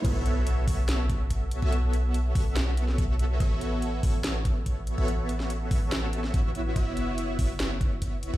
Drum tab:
CC |x---------------|----------------|----------------|----------------|
HH |x-x-x-o-x-x-x-x-|x-x-x-o-x-x-x-x-|x-x-x-o-x-x-x-x-|x-x-x-o-x-x-x-x-|
SD |--------o-------|--------o--o----|--------o-------|---o----o--o----|
BD |o-----o---o-o---|------o-----o---|o-----o---o-o---|------o-----o---|

CC |----------------|
HH |x-x-x-o-x-x-x-x-|
SD |--------o-------|
BD |o-----o---o-o---|